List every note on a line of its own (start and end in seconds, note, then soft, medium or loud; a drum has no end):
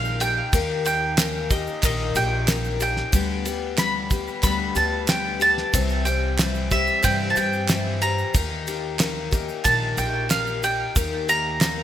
0.00 0.40 A#1 loud
0.00 0.21 D#3 medium
0.00 0.54 G3 soft
0.00 0.21 A#3 medium
0.00 0.21 D#4 medium
0.00 0.19 G4 medium
0.00 0.21 F5 loud
0.05 shaker soft
0.20 0.53 A#3 soft
0.20 0.54 D#4 medium
0.20 0.53 G4 medium
0.20 0.85 G5 loud
0.20 ride medium
0.20 shaker medium
0.53 1.66 D#2 loud
0.53 0.86 D#3 medium
0.53 0.86 A#3 medium
0.53 0.85 D#4 medium
0.53 0.83 G4 medium
0.53 kick loud
0.53 ride medium
0.53 shaker medium
0.85 1.18 A#3 soft
0.85 1.19 D#4 medium
0.85 1.18 G4 medium
0.85 1.53 G5 loud
0.85 ride medium
0.85 shaker medium
1.18 1.51 D#3 medium
1.18 1.51 A#3 medium
1.18 1.51 D#4 medium
1.18 1.49 G4 medium
1.18 snare loud
1.18 clap loud
1.18 ride medium
1.18 shaker loud
1.50 1.83 A#3 medium
1.50 1.84 D#4 soft
1.50 1.83 G4 medium
1.50 1.84 D#5 medium
1.50 kick medium
1.50 ride medium
1.50 shaker medium
1.67 shaker soft
1.83 2.12 A#1 medium
1.83 2.16 D#3 loud
1.83 2.16 A#3 medium
1.83 2.16 D#4 medium
1.83 2.14 G4 loud
1.83 2.18 D#5 medium
1.83 kick loud
1.83 clap medium
1.83 ride loud
1.83 shaker loud
2.15 3.00 A#1 loud
2.15 2.47 A#3 soft
2.15 2.48 D#4 medium
2.15 2.48 G4 medium
2.15 2.81 G5 medium
2.15 ride medium
2.15 shaker medium
2.47 2.80 D#3 medium
2.47 2.81 A#3 medium
2.47 2.80 D#4 medium
2.47 2.79 G4 medium
2.47 snare loud
2.47 clap loud
2.47 ride medium
2.47 shaker loud
2.64 shaker soft
2.80 3.12 A#3 soft
2.80 3.13 D#4 medium
2.80 3.13 G4 medium
2.80 3.78 G5 loud
2.80 ride medium
2.80 shaker medium
2.97 snare soft
3.12 4.26 D2 loud
3.12 3.45 D3 medium
3.12 3.46 G3 medium
3.12 3.46 B3 medium
3.12 3.44 G4 loud
3.12 kick loud
3.12 ride medium
3.12 shaker loud
3.45 3.77 G3 soft
3.45 3.78 B3 medium
3.45 3.78 G4 medium
3.45 ride medium
3.45 shaker medium
3.77 4.10 D3 medium
3.77 4.11 G3 medium
3.77 4.11 B3 medium
3.77 4.09 G4 medium
3.77 4.42 B5 loud
3.77 snare loud
3.77 clap loud
3.77 ride medium
3.77 shaker loud
4.10 4.42 G3 soft
4.10 4.43 B3 medium
4.10 4.43 G4 medium
4.10 kick medium
4.10 snare soft
4.10 ride medium
4.10 shaker medium
4.28 shaker soft
4.42 4.72 D2 loud
4.42 4.76 D3 medium
4.42 4.76 G3 medium
4.42 4.76 B3 medium
4.42 4.74 G4 medium
4.42 4.76 B5 loud
4.42 kick loud
4.42 clap medium
4.42 ride medium
4.42 shaker loud
4.75 5.61 D2 loud
4.75 5.07 G3 medium
4.75 5.08 B3 medium
4.75 5.08 G4 medium
4.75 5.07 A5 medium
4.75 ride medium
4.75 shaker medium
5.07 5.41 D3 medium
5.07 5.41 G3 medium
5.07 5.41 B3 medium
5.07 5.39 G4 medium
5.07 5.42 G5 loud
5.07 snare loud
5.07 clap medium
5.07 ride medium
5.07 shaker medium
5.40 5.73 G3 soft
5.40 5.74 B3 medium
5.40 5.73 G4 medium
5.40 6.03 A5 loud
5.40 ride medium
5.40 shaker medium
5.58 snare soft
5.73 6.87 C2 loud
5.73 6.06 C3 medium
5.73 6.07 E3 medium
5.73 6.07 G3 medium
5.73 6.06 C4 medium
5.73 6.04 G4 loud
5.73 kick loud
5.73 ride medium
5.73 shaker loud
5.89 shaker soft
6.05 6.39 G3 soft
6.05 6.39 C4 medium
6.05 6.39 G4 medium
6.05 6.67 G5 loud
6.05 ride medium
6.05 shaker medium
6.39 6.72 E3 medium
6.39 6.72 G3 medium
6.39 6.71 C4 medium
6.39 6.70 G4 medium
6.39 snare loud
6.39 clap loud
6.39 ride medium
6.39 shaker medium
6.55 shaker soft
6.71 7.03 G3 medium
6.71 7.03 C4 medium
6.71 7.04 G4 medium
6.71 7.04 E5 medium
6.71 kick medium
6.71 ride medium
6.71 shaker medium
6.87 shaker soft
7.03 7.32 G2 loud
7.03 7.36 C3 medium
7.03 7.36 E3 medium
7.03 7.37 G3 medium
7.03 7.36 C4 medium
7.03 7.35 G4 medium
7.03 7.28 G5 loud
7.03 kick loud
7.03 clap medium
7.03 ride loud
7.03 shaker loud
7.30 7.37 A5 medium
7.36 8.22 G2 loud
7.36 7.69 G3 soft
7.36 7.69 C4 medium
7.36 7.69 G4 medium
7.36 8.01 G5 medium
7.36 ride medium
7.36 shaker medium
7.53 shaker soft
7.68 8.02 E3 medium
7.68 8.03 G3 medium
7.68 8.02 C4 medium
7.68 8.00 G4 medium
7.68 snare loud
7.68 clap loud
7.68 ride medium
7.68 shaker loud
8.01 8.35 G3 soft
8.01 8.35 C4 soft
8.01 8.34 G4 soft
8.01 9.61 A#5 loud
8.01 ride medium
8.01 shaker medium
8.18 shaker soft
8.34 9.48 D#2 loud
8.34 8.67 D#3 medium
8.34 8.68 A#3 medium
8.34 8.68 D#4 medium
8.34 8.66 G4 medium
8.34 kick loud
8.34 ride medium
8.34 shaker medium
8.67 8.99 A#3 soft
8.67 9.00 D#4 medium
8.67 9.00 G4 medium
8.67 ride medium
8.67 shaker medium
8.99 9.32 D#3 medium
8.99 9.33 A#3 medium
8.99 9.32 D#4 medium
8.99 9.30 G4 medium
8.99 snare loud
8.99 clap loud
8.99 ride medium
8.99 shaker medium
9.31 9.64 A#3 medium
9.31 9.65 D#4 medium
9.31 9.65 G4 medium
9.31 kick medium
9.31 snare soft
9.31 ride medium
9.31 shaker medium
9.49 shaker soft
9.64 9.94 A#1 loud
9.64 9.98 D#3 medium
9.64 9.98 A#3 medium
9.64 9.98 D#4 medium
9.64 9.96 G4 loud
9.64 9.98 A5 loud
9.64 kick loud
9.64 clap medium
9.64 ride medium
9.64 shaker loud
9.97 10.83 A#1 loud
9.97 10.30 A#3 medium
9.97 10.31 D#4 medium
9.97 10.30 G4 medium
9.97 10.29 G5 loud
9.97 ride medium
9.97 shaker medium
10.30 10.63 D#3 medium
10.30 10.64 A#3 medium
10.30 10.64 D#4 medium
10.30 10.62 G4 medium
10.30 10.64 F5 loud
10.30 snare loud
10.30 clap loud
10.30 ride medium
10.30 shaker loud
10.47 shaker soft
10.63 10.95 A#3 soft
10.63 10.96 D#4 medium
10.63 10.96 G4 medium
10.63 11.29 G5 loud
10.63 ride medium
10.63 shaker medium
10.96 11.83 D#2 loud
10.96 11.29 D#3 medium
10.96 11.29 A#3 medium
10.96 11.28 D#4 medium
10.96 11.27 G4 loud
10.96 kick loud
10.96 ride medium
10.96 shaker loud
11.28 11.61 A#3 soft
11.28 11.61 D#4 medium
11.28 11.61 G4 medium
11.28 11.83 A#5 loud
11.28 ride medium
11.28 shaker medium
11.61 11.83 D#3 medium
11.61 11.83 A#3 medium
11.61 11.83 D#4 medium
11.61 11.83 G4 medium
11.61 snare loud
11.61 clap loud
11.61 ride medium
11.61 shaker loud